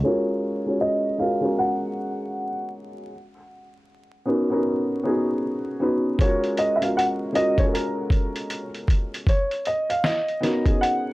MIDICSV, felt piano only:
0, 0, Header, 1, 2, 480
1, 0, Start_track
1, 0, Key_signature, 6, "major"
1, 0, Tempo, 769231
1, 22, Time_signature, 4, 2, 24, 8
1, 6945, End_track
2, 0, Start_track
2, 0, Title_t, "Felt piano"
2, 0, Program_c, 0, 0
2, 0, Control_c, 0, 64, 127
2, 22, Note_on_c, 0, 56, 91
2, 27, Note_on_c, 0, 61, 76
2, 32, Control_c, 0, 64, 0
2, 33, Note_on_c, 0, 65, 90
2, 37, Note_on_c, 0, 66, 76
2, 43, Note_on_c, 0, 70, 99
2, 127, Control_c, 0, 64, 127
2, 278, Note_off_c, 0, 56, 0
2, 280, Note_off_c, 0, 61, 0
2, 283, Note_off_c, 0, 65, 0
2, 285, Note_off_c, 0, 66, 0
2, 288, Note_off_c, 0, 70, 0
2, 412, Note_on_c, 0, 56, 57
2, 418, Note_on_c, 0, 61, 52
2, 422, Note_on_c, 0, 65, 55
2, 427, Note_on_c, 0, 66, 57
2, 434, Note_on_c, 0, 73, 70
2, 660, Note_off_c, 0, 56, 0
2, 664, Note_off_c, 0, 61, 0
2, 665, Note_off_c, 0, 65, 0
2, 668, Note_off_c, 0, 66, 0
2, 672, Note_off_c, 0, 73, 0
2, 736, Note_on_c, 0, 56, 64
2, 743, Note_on_c, 0, 61, 62
2, 748, Note_on_c, 0, 65, 54
2, 754, Note_on_c, 0, 66, 58
2, 759, Note_on_c, 0, 70, 67
2, 842, Note_off_c, 0, 56, 0
2, 846, Note_off_c, 0, 61, 0
2, 848, Note_off_c, 0, 65, 0
2, 851, Note_off_c, 0, 66, 0
2, 854, Note_off_c, 0, 70, 0
2, 880, Note_on_c, 0, 56, 69
2, 888, Note_on_c, 0, 61, 65
2, 891, Note_on_c, 0, 68, 58
2, 898, Note_on_c, 0, 66, 57
2, 901, Note_on_c, 0, 70, 71
2, 1548, Note_off_c, 0, 56, 0
2, 1552, Note_off_c, 0, 61, 0
2, 1554, Note_off_c, 0, 68, 0
2, 1557, Note_off_c, 0, 66, 0
2, 1558, Note_off_c, 0, 70, 0
2, 1949, Control_c, 0, 64, 0
2, 2075, Control_c, 0, 64, 127
2, 2655, Note_on_c, 0, 59, 77
2, 2660, Note_on_c, 0, 61, 69
2, 2665, Note_on_c, 0, 63, 67
2, 2670, Note_on_c, 0, 66, 68
2, 2676, Note_on_c, 0, 70, 77
2, 2762, Note_off_c, 0, 59, 0
2, 2764, Note_off_c, 0, 61, 0
2, 2767, Note_off_c, 0, 63, 0
2, 2769, Note_off_c, 0, 66, 0
2, 2772, Note_off_c, 0, 70, 0
2, 2807, Note_on_c, 0, 59, 74
2, 2813, Note_on_c, 0, 61, 73
2, 2819, Note_on_c, 0, 63, 68
2, 2824, Note_on_c, 0, 66, 67
2, 2829, Note_on_c, 0, 70, 76
2, 3058, Note_off_c, 0, 59, 0
2, 3061, Note_off_c, 0, 61, 0
2, 3064, Note_off_c, 0, 63, 0
2, 3066, Note_off_c, 0, 66, 0
2, 3069, Note_off_c, 0, 70, 0
2, 3141, Note_on_c, 0, 59, 76
2, 3147, Note_on_c, 0, 61, 66
2, 3152, Note_on_c, 0, 63, 78
2, 3155, Note_on_c, 0, 66, 74
2, 3161, Note_on_c, 0, 68, 76
2, 3500, Note_off_c, 0, 59, 0
2, 3503, Note_off_c, 0, 61, 0
2, 3505, Note_off_c, 0, 63, 0
2, 3507, Note_off_c, 0, 66, 0
2, 3510, Note_off_c, 0, 68, 0
2, 3618, Note_on_c, 0, 59, 68
2, 3625, Note_on_c, 0, 61, 63
2, 3628, Note_on_c, 0, 63, 67
2, 3632, Note_on_c, 0, 66, 70
2, 3639, Note_on_c, 0, 71, 80
2, 3805, Note_off_c, 0, 59, 0
2, 3808, Note_off_c, 0, 61, 0
2, 3810, Note_off_c, 0, 63, 0
2, 3812, Note_off_c, 0, 66, 0
2, 3815, Note_off_c, 0, 71, 0
2, 3867, Note_on_c, 0, 56, 85
2, 3870, Control_c, 0, 64, 0
2, 3872, Note_on_c, 0, 61, 73
2, 3876, Note_on_c, 0, 65, 78
2, 3881, Note_on_c, 0, 66, 88
2, 3887, Note_on_c, 0, 70, 95
2, 3982, Control_c, 0, 64, 127
2, 4120, Note_off_c, 0, 56, 0
2, 4123, Note_off_c, 0, 61, 0
2, 4125, Note_off_c, 0, 65, 0
2, 4127, Note_off_c, 0, 66, 0
2, 4130, Note_off_c, 0, 70, 0
2, 4249, Note_on_c, 0, 56, 58
2, 4254, Note_on_c, 0, 61, 56
2, 4259, Note_on_c, 0, 65, 53
2, 4264, Note_on_c, 0, 66, 54
2, 4270, Note_on_c, 0, 70, 63
2, 4499, Note_off_c, 0, 56, 0
2, 4501, Note_off_c, 0, 61, 0
2, 4504, Note_off_c, 0, 65, 0
2, 4507, Note_off_c, 0, 66, 0
2, 4509, Note_off_c, 0, 70, 0
2, 4570, Note_on_c, 0, 56, 61
2, 4574, Note_on_c, 0, 61, 62
2, 4579, Note_on_c, 0, 65, 58
2, 4586, Note_on_c, 0, 66, 72
2, 4588, Note_on_c, 0, 70, 67
2, 4679, Note_off_c, 0, 56, 0
2, 4681, Note_off_c, 0, 61, 0
2, 4684, Note_off_c, 0, 65, 0
2, 4687, Note_off_c, 0, 66, 0
2, 4688, Note_off_c, 0, 70, 0
2, 4731, Note_on_c, 0, 56, 66
2, 4737, Note_on_c, 0, 61, 72
2, 4742, Note_on_c, 0, 65, 61
2, 4746, Note_on_c, 0, 66, 55
2, 4752, Note_on_c, 0, 69, 53
2, 4772, Note_off_c, 0, 69, 0
2, 4793, Note_on_c, 0, 70, 77
2, 5393, Note_off_c, 0, 56, 0
2, 5396, Note_off_c, 0, 61, 0
2, 5399, Note_off_c, 0, 65, 0
2, 5401, Note_off_c, 0, 66, 0
2, 5424, Note_off_c, 0, 70, 0
2, 5790, Control_c, 0, 64, 0
2, 5917, Control_c, 0, 64, 127
2, 6493, Note_on_c, 0, 59, 71
2, 6499, Note_on_c, 0, 61, 59
2, 6503, Note_on_c, 0, 63, 62
2, 6508, Note_on_c, 0, 66, 63
2, 6512, Note_on_c, 0, 70, 69
2, 6601, Note_off_c, 0, 59, 0
2, 6604, Note_off_c, 0, 61, 0
2, 6606, Note_off_c, 0, 63, 0
2, 6608, Note_off_c, 0, 66, 0
2, 6610, Note_off_c, 0, 70, 0
2, 6644, Note_on_c, 0, 59, 57
2, 6648, Note_on_c, 0, 61, 61
2, 6654, Note_on_c, 0, 63, 59
2, 6660, Note_on_c, 0, 66, 56
2, 6663, Note_on_c, 0, 68, 69
2, 6897, Note_off_c, 0, 59, 0
2, 6898, Note_off_c, 0, 61, 0
2, 6901, Note_off_c, 0, 63, 0
2, 6904, Note_off_c, 0, 66, 0
2, 6906, Note_off_c, 0, 68, 0
2, 6945, End_track
0, 0, End_of_file